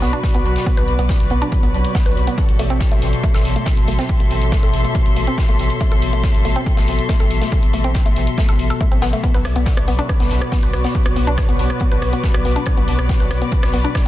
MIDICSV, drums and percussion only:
0, 0, Header, 1, 2, 480
1, 0, Start_track
1, 0, Tempo, 428571
1, 744, Time_signature, 4, 2, 24, 8
1, 15768, End_track
2, 0, Start_track
2, 0, Title_t, "Drums"
2, 16, Note_on_c, 9, 42, 63
2, 24, Note_on_c, 9, 38, 38
2, 128, Note_off_c, 9, 42, 0
2, 136, Note_off_c, 9, 38, 0
2, 146, Note_on_c, 9, 42, 68
2, 258, Note_off_c, 9, 42, 0
2, 260, Note_on_c, 9, 38, 111
2, 263, Note_on_c, 9, 36, 121
2, 264, Note_on_c, 9, 42, 66
2, 266, Note_off_c, 9, 42, 0
2, 266, Note_on_c, 9, 42, 88
2, 372, Note_off_c, 9, 38, 0
2, 375, Note_off_c, 9, 36, 0
2, 378, Note_off_c, 9, 42, 0
2, 386, Note_on_c, 9, 42, 64
2, 498, Note_off_c, 9, 42, 0
2, 506, Note_on_c, 9, 42, 66
2, 618, Note_off_c, 9, 42, 0
2, 626, Note_on_c, 9, 42, 66
2, 634, Note_on_c, 9, 38, 56
2, 738, Note_off_c, 9, 42, 0
2, 743, Note_on_c, 9, 36, 113
2, 745, Note_on_c, 9, 42, 65
2, 746, Note_off_c, 9, 38, 0
2, 747, Note_on_c, 9, 46, 71
2, 855, Note_off_c, 9, 36, 0
2, 857, Note_off_c, 9, 42, 0
2, 859, Note_off_c, 9, 46, 0
2, 866, Note_on_c, 9, 42, 63
2, 869, Note_off_c, 9, 42, 0
2, 869, Note_on_c, 9, 42, 41
2, 981, Note_off_c, 9, 42, 0
2, 981, Note_on_c, 9, 42, 62
2, 1093, Note_off_c, 9, 42, 0
2, 1107, Note_on_c, 9, 42, 63
2, 1219, Note_off_c, 9, 42, 0
2, 1219, Note_on_c, 9, 42, 78
2, 1223, Note_on_c, 9, 36, 117
2, 1225, Note_off_c, 9, 42, 0
2, 1225, Note_on_c, 9, 42, 66
2, 1226, Note_on_c, 9, 38, 102
2, 1335, Note_off_c, 9, 36, 0
2, 1337, Note_off_c, 9, 42, 0
2, 1338, Note_off_c, 9, 38, 0
2, 1347, Note_on_c, 9, 42, 67
2, 1457, Note_off_c, 9, 42, 0
2, 1457, Note_on_c, 9, 42, 64
2, 1569, Note_off_c, 9, 42, 0
2, 1587, Note_on_c, 9, 42, 62
2, 1699, Note_off_c, 9, 42, 0
2, 1700, Note_on_c, 9, 42, 88
2, 1703, Note_on_c, 9, 36, 119
2, 1705, Note_off_c, 9, 42, 0
2, 1705, Note_on_c, 9, 42, 65
2, 1815, Note_off_c, 9, 36, 0
2, 1817, Note_off_c, 9, 42, 0
2, 1827, Note_on_c, 9, 42, 62
2, 1939, Note_off_c, 9, 42, 0
2, 1951, Note_on_c, 9, 42, 70
2, 2063, Note_off_c, 9, 42, 0
2, 2065, Note_on_c, 9, 42, 42
2, 2067, Note_off_c, 9, 42, 0
2, 2067, Note_on_c, 9, 42, 69
2, 2179, Note_off_c, 9, 42, 0
2, 2183, Note_on_c, 9, 36, 122
2, 2183, Note_on_c, 9, 38, 103
2, 2184, Note_on_c, 9, 42, 81
2, 2185, Note_off_c, 9, 42, 0
2, 2185, Note_on_c, 9, 42, 65
2, 2295, Note_off_c, 9, 36, 0
2, 2295, Note_off_c, 9, 38, 0
2, 2297, Note_off_c, 9, 42, 0
2, 2306, Note_on_c, 9, 42, 66
2, 2418, Note_off_c, 9, 42, 0
2, 2429, Note_on_c, 9, 42, 69
2, 2541, Note_off_c, 9, 42, 0
2, 2546, Note_on_c, 9, 42, 40
2, 2658, Note_off_c, 9, 42, 0
2, 2663, Note_on_c, 9, 36, 112
2, 2664, Note_on_c, 9, 42, 59
2, 2669, Note_off_c, 9, 42, 0
2, 2669, Note_on_c, 9, 42, 75
2, 2775, Note_off_c, 9, 36, 0
2, 2781, Note_off_c, 9, 42, 0
2, 2786, Note_on_c, 9, 42, 61
2, 2898, Note_off_c, 9, 42, 0
2, 2904, Note_on_c, 9, 46, 110
2, 2905, Note_on_c, 9, 42, 67
2, 3016, Note_off_c, 9, 46, 0
2, 3017, Note_off_c, 9, 42, 0
2, 3026, Note_on_c, 9, 42, 62
2, 3138, Note_off_c, 9, 42, 0
2, 3138, Note_on_c, 9, 38, 97
2, 3141, Note_on_c, 9, 42, 93
2, 3143, Note_on_c, 9, 36, 121
2, 3145, Note_off_c, 9, 42, 0
2, 3145, Note_on_c, 9, 42, 65
2, 3250, Note_off_c, 9, 38, 0
2, 3255, Note_off_c, 9, 36, 0
2, 3257, Note_off_c, 9, 42, 0
2, 3265, Note_on_c, 9, 42, 64
2, 3377, Note_off_c, 9, 42, 0
2, 3383, Note_on_c, 9, 46, 94
2, 3386, Note_on_c, 9, 42, 65
2, 3495, Note_off_c, 9, 46, 0
2, 3498, Note_off_c, 9, 42, 0
2, 3505, Note_on_c, 9, 42, 61
2, 3617, Note_off_c, 9, 42, 0
2, 3623, Note_on_c, 9, 36, 112
2, 3624, Note_on_c, 9, 42, 83
2, 3735, Note_off_c, 9, 36, 0
2, 3736, Note_off_c, 9, 42, 0
2, 3743, Note_on_c, 9, 38, 58
2, 3746, Note_on_c, 9, 42, 61
2, 3855, Note_off_c, 9, 38, 0
2, 3858, Note_off_c, 9, 42, 0
2, 3863, Note_on_c, 9, 46, 93
2, 3864, Note_on_c, 9, 42, 64
2, 3872, Note_on_c, 9, 38, 41
2, 3975, Note_off_c, 9, 46, 0
2, 3976, Note_off_c, 9, 42, 0
2, 3984, Note_off_c, 9, 38, 0
2, 3986, Note_on_c, 9, 42, 65
2, 4096, Note_on_c, 9, 38, 120
2, 4098, Note_off_c, 9, 42, 0
2, 4103, Note_on_c, 9, 36, 116
2, 4103, Note_on_c, 9, 42, 78
2, 4104, Note_off_c, 9, 42, 0
2, 4104, Note_on_c, 9, 42, 59
2, 4208, Note_off_c, 9, 38, 0
2, 4215, Note_off_c, 9, 36, 0
2, 4216, Note_off_c, 9, 42, 0
2, 4226, Note_on_c, 9, 42, 61
2, 4338, Note_off_c, 9, 42, 0
2, 4343, Note_on_c, 9, 42, 65
2, 4343, Note_on_c, 9, 46, 87
2, 4455, Note_off_c, 9, 42, 0
2, 4455, Note_off_c, 9, 46, 0
2, 4465, Note_on_c, 9, 42, 60
2, 4468, Note_on_c, 9, 38, 56
2, 4577, Note_off_c, 9, 42, 0
2, 4580, Note_off_c, 9, 38, 0
2, 4583, Note_on_c, 9, 36, 112
2, 4583, Note_on_c, 9, 42, 61
2, 4586, Note_on_c, 9, 46, 77
2, 4695, Note_off_c, 9, 36, 0
2, 4695, Note_off_c, 9, 42, 0
2, 4698, Note_off_c, 9, 46, 0
2, 4705, Note_on_c, 9, 42, 61
2, 4711, Note_off_c, 9, 42, 0
2, 4711, Note_on_c, 9, 42, 45
2, 4823, Note_off_c, 9, 42, 0
2, 4823, Note_on_c, 9, 46, 102
2, 4829, Note_on_c, 9, 42, 65
2, 4935, Note_off_c, 9, 46, 0
2, 4941, Note_off_c, 9, 42, 0
2, 4946, Note_on_c, 9, 42, 63
2, 5058, Note_off_c, 9, 42, 0
2, 5061, Note_on_c, 9, 42, 84
2, 5063, Note_on_c, 9, 36, 121
2, 5064, Note_off_c, 9, 42, 0
2, 5064, Note_on_c, 9, 42, 62
2, 5067, Note_on_c, 9, 38, 102
2, 5175, Note_off_c, 9, 36, 0
2, 5176, Note_off_c, 9, 42, 0
2, 5179, Note_off_c, 9, 38, 0
2, 5186, Note_on_c, 9, 42, 61
2, 5298, Note_off_c, 9, 42, 0
2, 5302, Note_on_c, 9, 42, 69
2, 5303, Note_on_c, 9, 46, 83
2, 5414, Note_off_c, 9, 42, 0
2, 5415, Note_off_c, 9, 46, 0
2, 5426, Note_on_c, 9, 42, 59
2, 5538, Note_off_c, 9, 42, 0
2, 5543, Note_on_c, 9, 36, 110
2, 5544, Note_on_c, 9, 42, 62
2, 5549, Note_off_c, 9, 42, 0
2, 5549, Note_on_c, 9, 42, 88
2, 5655, Note_off_c, 9, 36, 0
2, 5661, Note_off_c, 9, 42, 0
2, 5665, Note_on_c, 9, 42, 61
2, 5777, Note_off_c, 9, 42, 0
2, 5783, Note_on_c, 9, 46, 100
2, 5787, Note_on_c, 9, 42, 67
2, 5895, Note_off_c, 9, 46, 0
2, 5899, Note_off_c, 9, 42, 0
2, 5900, Note_on_c, 9, 42, 48
2, 5905, Note_off_c, 9, 42, 0
2, 5905, Note_on_c, 9, 42, 62
2, 6017, Note_off_c, 9, 42, 0
2, 6023, Note_on_c, 9, 36, 109
2, 6024, Note_on_c, 9, 42, 60
2, 6032, Note_on_c, 9, 38, 101
2, 6135, Note_off_c, 9, 36, 0
2, 6136, Note_off_c, 9, 42, 0
2, 6144, Note_off_c, 9, 38, 0
2, 6145, Note_on_c, 9, 42, 59
2, 6257, Note_off_c, 9, 42, 0
2, 6264, Note_on_c, 9, 46, 83
2, 6265, Note_on_c, 9, 42, 64
2, 6376, Note_off_c, 9, 46, 0
2, 6377, Note_off_c, 9, 42, 0
2, 6377, Note_on_c, 9, 42, 47
2, 6386, Note_off_c, 9, 42, 0
2, 6386, Note_on_c, 9, 42, 65
2, 6498, Note_off_c, 9, 42, 0
2, 6503, Note_on_c, 9, 36, 100
2, 6504, Note_on_c, 9, 42, 86
2, 6615, Note_off_c, 9, 36, 0
2, 6616, Note_off_c, 9, 42, 0
2, 6626, Note_on_c, 9, 42, 63
2, 6738, Note_off_c, 9, 42, 0
2, 6742, Note_on_c, 9, 42, 64
2, 6744, Note_on_c, 9, 46, 106
2, 6854, Note_off_c, 9, 42, 0
2, 6856, Note_off_c, 9, 46, 0
2, 6865, Note_on_c, 9, 42, 64
2, 6977, Note_off_c, 9, 42, 0
2, 6982, Note_on_c, 9, 42, 91
2, 6983, Note_on_c, 9, 36, 116
2, 6984, Note_off_c, 9, 42, 0
2, 6984, Note_on_c, 9, 42, 68
2, 6985, Note_on_c, 9, 38, 104
2, 7095, Note_off_c, 9, 36, 0
2, 7096, Note_off_c, 9, 42, 0
2, 7097, Note_off_c, 9, 38, 0
2, 7106, Note_on_c, 9, 42, 67
2, 7218, Note_off_c, 9, 42, 0
2, 7222, Note_on_c, 9, 42, 68
2, 7223, Note_on_c, 9, 46, 85
2, 7334, Note_off_c, 9, 42, 0
2, 7335, Note_off_c, 9, 46, 0
2, 7345, Note_on_c, 9, 42, 62
2, 7457, Note_off_c, 9, 42, 0
2, 7463, Note_on_c, 9, 36, 111
2, 7464, Note_on_c, 9, 42, 66
2, 7467, Note_off_c, 9, 42, 0
2, 7467, Note_on_c, 9, 42, 83
2, 7575, Note_off_c, 9, 36, 0
2, 7579, Note_off_c, 9, 42, 0
2, 7582, Note_on_c, 9, 38, 61
2, 7585, Note_on_c, 9, 42, 63
2, 7694, Note_off_c, 9, 38, 0
2, 7697, Note_off_c, 9, 42, 0
2, 7703, Note_on_c, 9, 42, 66
2, 7703, Note_on_c, 9, 46, 98
2, 7704, Note_on_c, 9, 38, 38
2, 7815, Note_off_c, 9, 42, 0
2, 7815, Note_off_c, 9, 46, 0
2, 7816, Note_off_c, 9, 38, 0
2, 7825, Note_on_c, 9, 42, 66
2, 7937, Note_off_c, 9, 42, 0
2, 7939, Note_on_c, 9, 38, 113
2, 7943, Note_on_c, 9, 36, 109
2, 7943, Note_on_c, 9, 42, 80
2, 8051, Note_off_c, 9, 38, 0
2, 8055, Note_off_c, 9, 36, 0
2, 8055, Note_off_c, 9, 42, 0
2, 8064, Note_on_c, 9, 42, 65
2, 8176, Note_off_c, 9, 42, 0
2, 8183, Note_on_c, 9, 46, 89
2, 8192, Note_on_c, 9, 42, 70
2, 8295, Note_off_c, 9, 46, 0
2, 8301, Note_on_c, 9, 38, 53
2, 8304, Note_off_c, 9, 42, 0
2, 8305, Note_on_c, 9, 42, 66
2, 8413, Note_off_c, 9, 38, 0
2, 8417, Note_off_c, 9, 42, 0
2, 8418, Note_on_c, 9, 46, 77
2, 8423, Note_on_c, 9, 36, 105
2, 8423, Note_on_c, 9, 42, 66
2, 8530, Note_off_c, 9, 46, 0
2, 8535, Note_off_c, 9, 36, 0
2, 8535, Note_off_c, 9, 42, 0
2, 8544, Note_on_c, 9, 42, 67
2, 8548, Note_off_c, 9, 42, 0
2, 8548, Note_on_c, 9, 42, 46
2, 8659, Note_off_c, 9, 42, 0
2, 8659, Note_on_c, 9, 42, 73
2, 8662, Note_on_c, 9, 46, 104
2, 8771, Note_off_c, 9, 42, 0
2, 8774, Note_off_c, 9, 46, 0
2, 8783, Note_on_c, 9, 42, 66
2, 8895, Note_off_c, 9, 42, 0
2, 8895, Note_on_c, 9, 38, 94
2, 8902, Note_on_c, 9, 42, 70
2, 8903, Note_on_c, 9, 36, 116
2, 8911, Note_off_c, 9, 42, 0
2, 8911, Note_on_c, 9, 42, 84
2, 9007, Note_off_c, 9, 38, 0
2, 9015, Note_off_c, 9, 36, 0
2, 9023, Note_off_c, 9, 42, 0
2, 9024, Note_on_c, 9, 42, 69
2, 9136, Note_off_c, 9, 42, 0
2, 9141, Note_on_c, 9, 42, 60
2, 9143, Note_on_c, 9, 46, 88
2, 9253, Note_off_c, 9, 42, 0
2, 9255, Note_off_c, 9, 46, 0
2, 9265, Note_on_c, 9, 42, 63
2, 9377, Note_off_c, 9, 42, 0
2, 9383, Note_on_c, 9, 36, 112
2, 9383, Note_on_c, 9, 42, 65
2, 9391, Note_off_c, 9, 42, 0
2, 9391, Note_on_c, 9, 42, 76
2, 9392, Note_on_c, 9, 38, 115
2, 9495, Note_off_c, 9, 36, 0
2, 9503, Note_off_c, 9, 42, 0
2, 9504, Note_off_c, 9, 38, 0
2, 9505, Note_on_c, 9, 42, 65
2, 9617, Note_off_c, 9, 42, 0
2, 9618, Note_on_c, 9, 42, 60
2, 9623, Note_on_c, 9, 46, 92
2, 9730, Note_off_c, 9, 42, 0
2, 9735, Note_off_c, 9, 46, 0
2, 9746, Note_on_c, 9, 42, 71
2, 9858, Note_off_c, 9, 42, 0
2, 9863, Note_on_c, 9, 36, 116
2, 9864, Note_on_c, 9, 42, 63
2, 9975, Note_off_c, 9, 36, 0
2, 9976, Note_off_c, 9, 42, 0
2, 9986, Note_on_c, 9, 42, 62
2, 10098, Note_off_c, 9, 42, 0
2, 10100, Note_on_c, 9, 38, 115
2, 10104, Note_on_c, 9, 46, 90
2, 10108, Note_on_c, 9, 42, 80
2, 10212, Note_off_c, 9, 38, 0
2, 10216, Note_off_c, 9, 46, 0
2, 10220, Note_off_c, 9, 42, 0
2, 10226, Note_on_c, 9, 42, 68
2, 10338, Note_off_c, 9, 42, 0
2, 10343, Note_on_c, 9, 36, 107
2, 10343, Note_on_c, 9, 42, 66
2, 10344, Note_off_c, 9, 42, 0
2, 10344, Note_on_c, 9, 42, 80
2, 10455, Note_off_c, 9, 36, 0
2, 10456, Note_off_c, 9, 42, 0
2, 10466, Note_on_c, 9, 42, 67
2, 10578, Note_off_c, 9, 42, 0
2, 10579, Note_on_c, 9, 42, 68
2, 10584, Note_on_c, 9, 37, 65
2, 10584, Note_on_c, 9, 46, 108
2, 10691, Note_off_c, 9, 42, 0
2, 10696, Note_off_c, 9, 37, 0
2, 10696, Note_off_c, 9, 46, 0
2, 10705, Note_on_c, 9, 42, 70
2, 10817, Note_off_c, 9, 42, 0
2, 10817, Note_on_c, 9, 38, 110
2, 10823, Note_on_c, 9, 36, 125
2, 10823, Note_on_c, 9, 42, 69
2, 10824, Note_off_c, 9, 42, 0
2, 10824, Note_on_c, 9, 42, 88
2, 10929, Note_off_c, 9, 38, 0
2, 10935, Note_off_c, 9, 36, 0
2, 10936, Note_off_c, 9, 42, 0
2, 10945, Note_on_c, 9, 37, 63
2, 10945, Note_on_c, 9, 42, 70
2, 11057, Note_off_c, 9, 37, 0
2, 11057, Note_off_c, 9, 42, 0
2, 11063, Note_on_c, 9, 46, 89
2, 11069, Note_on_c, 9, 42, 64
2, 11175, Note_off_c, 9, 46, 0
2, 11181, Note_off_c, 9, 42, 0
2, 11186, Note_on_c, 9, 42, 68
2, 11298, Note_off_c, 9, 42, 0
2, 11303, Note_on_c, 9, 36, 115
2, 11303, Note_on_c, 9, 42, 81
2, 11304, Note_off_c, 9, 42, 0
2, 11304, Note_on_c, 9, 37, 60
2, 11304, Note_on_c, 9, 42, 68
2, 11415, Note_off_c, 9, 36, 0
2, 11416, Note_off_c, 9, 37, 0
2, 11416, Note_off_c, 9, 42, 0
2, 11426, Note_on_c, 9, 42, 66
2, 11429, Note_on_c, 9, 38, 54
2, 11538, Note_off_c, 9, 42, 0
2, 11541, Note_off_c, 9, 38, 0
2, 11544, Note_on_c, 9, 46, 100
2, 11547, Note_on_c, 9, 42, 66
2, 11549, Note_on_c, 9, 38, 38
2, 11656, Note_off_c, 9, 46, 0
2, 11659, Note_off_c, 9, 42, 0
2, 11661, Note_off_c, 9, 38, 0
2, 11665, Note_on_c, 9, 37, 66
2, 11665, Note_on_c, 9, 42, 73
2, 11777, Note_off_c, 9, 37, 0
2, 11777, Note_off_c, 9, 42, 0
2, 11780, Note_on_c, 9, 38, 99
2, 11783, Note_on_c, 9, 36, 120
2, 11784, Note_on_c, 9, 42, 70
2, 11787, Note_off_c, 9, 42, 0
2, 11787, Note_on_c, 9, 42, 78
2, 11892, Note_off_c, 9, 38, 0
2, 11895, Note_off_c, 9, 36, 0
2, 11899, Note_off_c, 9, 42, 0
2, 11905, Note_on_c, 9, 42, 70
2, 12017, Note_off_c, 9, 42, 0
2, 12023, Note_on_c, 9, 37, 60
2, 12023, Note_on_c, 9, 46, 86
2, 12024, Note_on_c, 9, 42, 70
2, 12135, Note_off_c, 9, 37, 0
2, 12135, Note_off_c, 9, 46, 0
2, 12136, Note_off_c, 9, 42, 0
2, 12145, Note_on_c, 9, 42, 66
2, 12147, Note_on_c, 9, 38, 52
2, 12257, Note_off_c, 9, 42, 0
2, 12258, Note_on_c, 9, 46, 75
2, 12259, Note_off_c, 9, 38, 0
2, 12263, Note_on_c, 9, 36, 121
2, 12263, Note_on_c, 9, 42, 67
2, 12370, Note_off_c, 9, 46, 0
2, 12375, Note_off_c, 9, 36, 0
2, 12375, Note_off_c, 9, 42, 0
2, 12384, Note_on_c, 9, 37, 64
2, 12384, Note_on_c, 9, 42, 69
2, 12385, Note_off_c, 9, 42, 0
2, 12385, Note_on_c, 9, 42, 45
2, 12496, Note_off_c, 9, 37, 0
2, 12497, Note_off_c, 9, 42, 0
2, 12502, Note_on_c, 9, 46, 109
2, 12513, Note_on_c, 9, 42, 74
2, 12614, Note_off_c, 9, 46, 0
2, 12625, Note_off_c, 9, 42, 0
2, 12626, Note_on_c, 9, 42, 71
2, 12738, Note_off_c, 9, 42, 0
2, 12738, Note_on_c, 9, 38, 110
2, 12743, Note_on_c, 9, 36, 127
2, 12743, Note_on_c, 9, 37, 66
2, 12743, Note_on_c, 9, 42, 72
2, 12750, Note_off_c, 9, 42, 0
2, 12750, Note_on_c, 9, 42, 91
2, 12850, Note_off_c, 9, 38, 0
2, 12855, Note_off_c, 9, 36, 0
2, 12855, Note_off_c, 9, 37, 0
2, 12862, Note_off_c, 9, 42, 0
2, 12866, Note_on_c, 9, 42, 71
2, 12978, Note_off_c, 9, 42, 0
2, 12982, Note_on_c, 9, 42, 66
2, 12984, Note_on_c, 9, 46, 93
2, 13094, Note_off_c, 9, 42, 0
2, 13096, Note_off_c, 9, 46, 0
2, 13105, Note_on_c, 9, 37, 66
2, 13105, Note_on_c, 9, 42, 69
2, 13212, Note_off_c, 9, 42, 0
2, 13212, Note_on_c, 9, 42, 90
2, 13217, Note_off_c, 9, 37, 0
2, 13223, Note_on_c, 9, 36, 122
2, 13224, Note_off_c, 9, 42, 0
2, 13224, Note_on_c, 9, 42, 71
2, 13335, Note_off_c, 9, 36, 0
2, 13336, Note_off_c, 9, 42, 0
2, 13345, Note_on_c, 9, 42, 70
2, 13457, Note_off_c, 9, 42, 0
2, 13460, Note_on_c, 9, 42, 67
2, 13463, Note_on_c, 9, 37, 60
2, 13463, Note_on_c, 9, 46, 105
2, 13572, Note_off_c, 9, 42, 0
2, 13575, Note_off_c, 9, 37, 0
2, 13575, Note_off_c, 9, 46, 0
2, 13585, Note_on_c, 9, 42, 72
2, 13587, Note_off_c, 9, 42, 0
2, 13587, Note_on_c, 9, 42, 45
2, 13699, Note_off_c, 9, 42, 0
2, 13703, Note_on_c, 9, 36, 117
2, 13703, Note_on_c, 9, 42, 67
2, 13705, Note_on_c, 9, 38, 119
2, 13708, Note_off_c, 9, 42, 0
2, 13708, Note_on_c, 9, 42, 88
2, 13815, Note_off_c, 9, 36, 0
2, 13817, Note_off_c, 9, 38, 0
2, 13820, Note_off_c, 9, 42, 0
2, 13825, Note_on_c, 9, 37, 66
2, 13825, Note_on_c, 9, 42, 71
2, 13937, Note_off_c, 9, 37, 0
2, 13937, Note_off_c, 9, 42, 0
2, 13944, Note_on_c, 9, 42, 70
2, 13944, Note_on_c, 9, 46, 96
2, 14056, Note_off_c, 9, 42, 0
2, 14056, Note_off_c, 9, 46, 0
2, 14066, Note_on_c, 9, 42, 70
2, 14069, Note_off_c, 9, 42, 0
2, 14069, Note_on_c, 9, 42, 45
2, 14175, Note_off_c, 9, 42, 0
2, 14175, Note_on_c, 9, 42, 92
2, 14184, Note_off_c, 9, 42, 0
2, 14184, Note_on_c, 9, 36, 112
2, 14184, Note_on_c, 9, 37, 67
2, 14184, Note_on_c, 9, 42, 66
2, 14296, Note_off_c, 9, 36, 0
2, 14296, Note_off_c, 9, 37, 0
2, 14296, Note_off_c, 9, 42, 0
2, 14307, Note_on_c, 9, 42, 67
2, 14419, Note_off_c, 9, 42, 0
2, 14424, Note_on_c, 9, 42, 71
2, 14424, Note_on_c, 9, 46, 114
2, 14536, Note_off_c, 9, 42, 0
2, 14536, Note_off_c, 9, 46, 0
2, 14546, Note_on_c, 9, 37, 67
2, 14546, Note_on_c, 9, 42, 71
2, 14658, Note_off_c, 9, 37, 0
2, 14658, Note_off_c, 9, 42, 0
2, 14663, Note_on_c, 9, 36, 127
2, 14665, Note_on_c, 9, 42, 96
2, 14668, Note_on_c, 9, 38, 101
2, 14775, Note_off_c, 9, 36, 0
2, 14777, Note_off_c, 9, 42, 0
2, 14780, Note_off_c, 9, 38, 0
2, 14786, Note_on_c, 9, 42, 68
2, 14898, Note_off_c, 9, 42, 0
2, 14903, Note_on_c, 9, 42, 66
2, 14905, Note_on_c, 9, 37, 66
2, 14905, Note_on_c, 9, 46, 96
2, 15015, Note_off_c, 9, 42, 0
2, 15017, Note_off_c, 9, 37, 0
2, 15017, Note_off_c, 9, 46, 0
2, 15026, Note_on_c, 9, 42, 64
2, 15138, Note_off_c, 9, 42, 0
2, 15139, Note_on_c, 9, 42, 88
2, 15143, Note_on_c, 9, 36, 126
2, 15144, Note_off_c, 9, 42, 0
2, 15144, Note_on_c, 9, 42, 68
2, 15255, Note_off_c, 9, 36, 0
2, 15256, Note_off_c, 9, 42, 0
2, 15267, Note_on_c, 9, 37, 66
2, 15267, Note_on_c, 9, 42, 68
2, 15275, Note_on_c, 9, 38, 55
2, 15372, Note_off_c, 9, 42, 0
2, 15372, Note_on_c, 9, 42, 70
2, 15379, Note_off_c, 9, 37, 0
2, 15384, Note_on_c, 9, 46, 106
2, 15386, Note_off_c, 9, 38, 0
2, 15386, Note_on_c, 9, 38, 45
2, 15484, Note_off_c, 9, 42, 0
2, 15496, Note_off_c, 9, 46, 0
2, 15498, Note_off_c, 9, 38, 0
2, 15506, Note_on_c, 9, 42, 73
2, 15618, Note_off_c, 9, 42, 0
2, 15623, Note_on_c, 9, 36, 127
2, 15623, Note_on_c, 9, 42, 82
2, 15624, Note_off_c, 9, 42, 0
2, 15624, Note_on_c, 9, 37, 66
2, 15624, Note_on_c, 9, 42, 68
2, 15628, Note_on_c, 9, 38, 127
2, 15735, Note_off_c, 9, 36, 0
2, 15736, Note_off_c, 9, 37, 0
2, 15736, Note_off_c, 9, 42, 0
2, 15740, Note_off_c, 9, 38, 0
2, 15768, End_track
0, 0, End_of_file